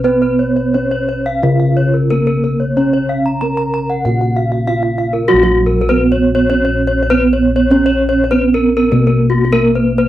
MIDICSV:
0, 0, Header, 1, 4, 480
1, 0, Start_track
1, 0, Tempo, 691244
1, 27, Time_signature, 4, 2, 24, 8
1, 1466, Tempo, 649351
1, 2906, Tempo, 607903
1, 7663, End_track
2, 0, Start_track
2, 0, Title_t, "Bronze metallophone"
2, 0, Program_c, 0, 11
2, 30, Note_on_c, 0, 71, 37
2, 90, Note_off_c, 0, 71, 0
2, 152, Note_on_c, 0, 71, 47
2, 213, Note_off_c, 0, 71, 0
2, 272, Note_on_c, 0, 73, 43
2, 334, Note_off_c, 0, 73, 0
2, 392, Note_on_c, 0, 73, 38
2, 455, Note_off_c, 0, 73, 0
2, 516, Note_on_c, 0, 73, 51
2, 577, Note_off_c, 0, 73, 0
2, 634, Note_on_c, 0, 73, 48
2, 697, Note_off_c, 0, 73, 0
2, 755, Note_on_c, 0, 73, 40
2, 817, Note_off_c, 0, 73, 0
2, 875, Note_on_c, 0, 77, 46
2, 936, Note_off_c, 0, 77, 0
2, 995, Note_on_c, 0, 77, 45
2, 1055, Note_off_c, 0, 77, 0
2, 1109, Note_on_c, 0, 77, 36
2, 1171, Note_off_c, 0, 77, 0
2, 1227, Note_on_c, 0, 73, 45
2, 1289, Note_off_c, 0, 73, 0
2, 1346, Note_on_c, 0, 70, 35
2, 1406, Note_off_c, 0, 70, 0
2, 1461, Note_on_c, 0, 70, 57
2, 1526, Note_off_c, 0, 70, 0
2, 1584, Note_on_c, 0, 70, 48
2, 1648, Note_off_c, 0, 70, 0
2, 1709, Note_on_c, 0, 70, 43
2, 1772, Note_off_c, 0, 70, 0
2, 1827, Note_on_c, 0, 73, 36
2, 1892, Note_off_c, 0, 73, 0
2, 1952, Note_on_c, 0, 73, 39
2, 2015, Note_off_c, 0, 73, 0
2, 2074, Note_on_c, 0, 73, 47
2, 2136, Note_off_c, 0, 73, 0
2, 2191, Note_on_c, 0, 77, 46
2, 2254, Note_off_c, 0, 77, 0
2, 2313, Note_on_c, 0, 82, 40
2, 2374, Note_off_c, 0, 82, 0
2, 2427, Note_on_c, 0, 82, 47
2, 2490, Note_off_c, 0, 82, 0
2, 2547, Note_on_c, 0, 82, 50
2, 2610, Note_off_c, 0, 82, 0
2, 2669, Note_on_c, 0, 82, 46
2, 2729, Note_off_c, 0, 82, 0
2, 2786, Note_on_c, 0, 78, 39
2, 2846, Note_off_c, 0, 78, 0
2, 2900, Note_on_c, 0, 78, 46
2, 2965, Note_off_c, 0, 78, 0
2, 3026, Note_on_c, 0, 78, 36
2, 3090, Note_off_c, 0, 78, 0
2, 3147, Note_on_c, 0, 77, 41
2, 3212, Note_off_c, 0, 77, 0
2, 3269, Note_on_c, 0, 77, 34
2, 3333, Note_off_c, 0, 77, 0
2, 3392, Note_on_c, 0, 77, 52
2, 3456, Note_off_c, 0, 77, 0
2, 3514, Note_on_c, 0, 77, 36
2, 3577, Note_off_c, 0, 77, 0
2, 3635, Note_on_c, 0, 77, 42
2, 3698, Note_off_c, 0, 77, 0
2, 3753, Note_on_c, 0, 70, 41
2, 3817, Note_off_c, 0, 70, 0
2, 3870, Note_on_c, 0, 66, 75
2, 3935, Note_off_c, 0, 66, 0
2, 3991, Note_on_c, 0, 66, 71
2, 4055, Note_off_c, 0, 66, 0
2, 4172, Note_on_c, 0, 70, 50
2, 4235, Note_off_c, 0, 70, 0
2, 4292, Note_on_c, 0, 70, 55
2, 4352, Note_on_c, 0, 71, 71
2, 4355, Note_off_c, 0, 70, 0
2, 4415, Note_off_c, 0, 71, 0
2, 4531, Note_on_c, 0, 73, 60
2, 4594, Note_off_c, 0, 73, 0
2, 4714, Note_on_c, 0, 73, 65
2, 4775, Note_off_c, 0, 73, 0
2, 4831, Note_on_c, 0, 73, 72
2, 4893, Note_off_c, 0, 73, 0
2, 4951, Note_on_c, 0, 73, 49
2, 5013, Note_off_c, 0, 73, 0
2, 5129, Note_on_c, 0, 73, 57
2, 5192, Note_off_c, 0, 73, 0
2, 5249, Note_on_c, 0, 73, 50
2, 5308, Note_on_c, 0, 71, 87
2, 5312, Note_off_c, 0, 73, 0
2, 5371, Note_off_c, 0, 71, 0
2, 5488, Note_on_c, 0, 73, 57
2, 5551, Note_off_c, 0, 73, 0
2, 5670, Note_on_c, 0, 73, 66
2, 5731, Note_off_c, 0, 73, 0
2, 5792, Note_on_c, 0, 73, 61
2, 5852, Note_off_c, 0, 73, 0
2, 5907, Note_on_c, 0, 73, 72
2, 5969, Note_off_c, 0, 73, 0
2, 6088, Note_on_c, 0, 73, 62
2, 6149, Note_off_c, 0, 73, 0
2, 6208, Note_on_c, 0, 73, 46
2, 6262, Note_on_c, 0, 71, 68
2, 6269, Note_off_c, 0, 73, 0
2, 6326, Note_off_c, 0, 71, 0
2, 6446, Note_on_c, 0, 70, 65
2, 6507, Note_off_c, 0, 70, 0
2, 6624, Note_on_c, 0, 70, 65
2, 6686, Note_off_c, 0, 70, 0
2, 6744, Note_on_c, 0, 70, 60
2, 6805, Note_off_c, 0, 70, 0
2, 6863, Note_on_c, 0, 70, 57
2, 6925, Note_off_c, 0, 70, 0
2, 7042, Note_on_c, 0, 66, 62
2, 7104, Note_off_c, 0, 66, 0
2, 7161, Note_on_c, 0, 66, 51
2, 7222, Note_on_c, 0, 70, 81
2, 7224, Note_off_c, 0, 66, 0
2, 7284, Note_off_c, 0, 70, 0
2, 7402, Note_on_c, 0, 71, 55
2, 7464, Note_off_c, 0, 71, 0
2, 7583, Note_on_c, 0, 71, 74
2, 7643, Note_off_c, 0, 71, 0
2, 7663, End_track
3, 0, Start_track
3, 0, Title_t, "Bronze metallophone"
3, 0, Program_c, 1, 11
3, 25, Note_on_c, 1, 59, 52
3, 512, Note_on_c, 1, 61, 45
3, 516, Note_off_c, 1, 59, 0
3, 989, Note_on_c, 1, 65, 56
3, 995, Note_off_c, 1, 61, 0
3, 1463, Note_off_c, 1, 65, 0
3, 1465, Note_on_c, 1, 58, 50
3, 1955, Note_off_c, 1, 58, 0
3, 1956, Note_on_c, 1, 61, 49
3, 2435, Note_off_c, 1, 61, 0
3, 2435, Note_on_c, 1, 70, 46
3, 2905, Note_off_c, 1, 70, 0
3, 2906, Note_on_c, 1, 66, 46
3, 3396, Note_on_c, 1, 65, 50
3, 3398, Note_off_c, 1, 66, 0
3, 3880, Note_off_c, 1, 65, 0
3, 3884, Note_on_c, 1, 54, 65
3, 4360, Note_off_c, 1, 54, 0
3, 4362, Note_on_c, 1, 59, 67
3, 4837, Note_on_c, 1, 61, 62
3, 4838, Note_off_c, 1, 59, 0
3, 5311, Note_on_c, 1, 59, 74
3, 5314, Note_off_c, 1, 61, 0
3, 5784, Note_on_c, 1, 61, 81
3, 5790, Note_off_c, 1, 59, 0
3, 6266, Note_off_c, 1, 61, 0
3, 6271, Note_on_c, 1, 59, 73
3, 6739, Note_on_c, 1, 58, 65
3, 6748, Note_off_c, 1, 59, 0
3, 7209, Note_off_c, 1, 58, 0
3, 7218, Note_on_c, 1, 58, 79
3, 7663, Note_off_c, 1, 58, 0
3, 7663, End_track
4, 0, Start_track
4, 0, Title_t, "Kettle gongs"
4, 0, Program_c, 2, 14
4, 0, Note_on_c, 2, 47, 75
4, 30, Note_on_c, 2, 71, 75
4, 491, Note_off_c, 2, 47, 0
4, 521, Note_on_c, 2, 59, 49
4, 576, Note_off_c, 2, 59, 0
4, 995, Note_on_c, 2, 49, 74
4, 1441, Note_off_c, 2, 71, 0
4, 1464, Note_on_c, 2, 59, 42
4, 1524, Note_off_c, 2, 59, 0
4, 1952, Note_on_c, 2, 61, 62
4, 2405, Note_off_c, 2, 49, 0
4, 2433, Note_on_c, 2, 59, 40
4, 2492, Note_off_c, 2, 59, 0
4, 2902, Note_on_c, 2, 46, 61
4, 3364, Note_off_c, 2, 61, 0
4, 3392, Note_on_c, 2, 59, 40
4, 3455, Note_off_c, 2, 59, 0
4, 3873, Note_on_c, 2, 66, 84
4, 3914, Note_on_c, 2, 34, 88
4, 4325, Note_off_c, 2, 46, 0
4, 4356, Note_on_c, 2, 59, 52
4, 4419, Note_off_c, 2, 59, 0
4, 5279, Note_off_c, 2, 66, 0
4, 5312, Note_on_c, 2, 59, 46
4, 5375, Note_off_c, 2, 59, 0
4, 5794, Note_on_c, 2, 61, 67
4, 6272, Note_on_c, 2, 59, 51
4, 6335, Note_off_c, 2, 59, 0
4, 6734, Note_off_c, 2, 34, 0
4, 6747, Note_on_c, 2, 47, 82
4, 7195, Note_off_c, 2, 61, 0
4, 7228, Note_on_c, 2, 59, 46
4, 7291, Note_off_c, 2, 59, 0
4, 7663, Note_off_c, 2, 47, 0
4, 7663, End_track
0, 0, End_of_file